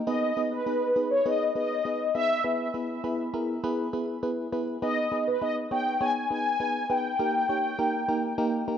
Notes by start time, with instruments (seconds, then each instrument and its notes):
0.07 fm electric piano B3 D#4 G#4 B4, analog polysynth D#5
0.37 fm electric piano B3 D#4 G#4 B4
0.51 analog polysynth B4
0.66 fm electric piano B3 D#4 G#4 B4
0.96 fm electric piano B3 D#4 G#4 B4
1.11 analog polysynth C#5
1.25 fm electric piano B3 D#4 G#4 B4, analog polysynth D#5
1.55 fm electric piano B3 D#4 G#4 B4, analog polysynth D#5
1.85 fm electric piano B3 D#4 G#4 B4
2.15 fm electric piano B3 D#4 G#4 B4, analog polysynth E5
2.44 fm electric piano B3 E4 G#4 B4
2.74 fm electric piano B3 E4 G#4 B4
3.04 fm electric piano B3 E4 G#4 B4
3.33 fm electric piano B3 E4 G#4 A#4
3.63 fm electric piano B3 E4 G#4 B4
3.93 fm electric piano B3 E4 G#4 B4
4.23 fm electric piano B3 E4 G#4 B4
4.53 fm electric piano B3 E4 G#4 B4
4.82 fm electric piano B3 D#4 G#4 B4, analog polysynth D#5
5.12 fm electric piano B3 D#4 G#4 B4
5.27 analog polysynth B4
5.41 fm electric piano B3 D#4 G#4 B4, analog polysynth D#5
5.71 fm electric piano B3 D#4 G#4 C#5, analog polysynth G5
6.01 fm electric piano B3 D#4 G#4 C#5, analog polysynth G#5
6.30 fm electric piano B3 D#4 G#4 B4, analog polysynth G#5
6.60 fm electric piano B3 D#4 G#4 B4
6.90 fm electric piano B3 D#4 G#4 B4, analog polysynth G5
7.19 fm electric piano A#3 D#4 G4 A#4
7.49 fm electric piano A#3 D#4 G4 C#5
7.79 fm electric piano A#3 D#4 G4 A#4
8.08 fm electric piano A#3 D#4 G4 A#4
8.38 fm electric piano A#3 D#4 G4 A#4
8.68 fm electric piano A#3 D#4 G4 A#4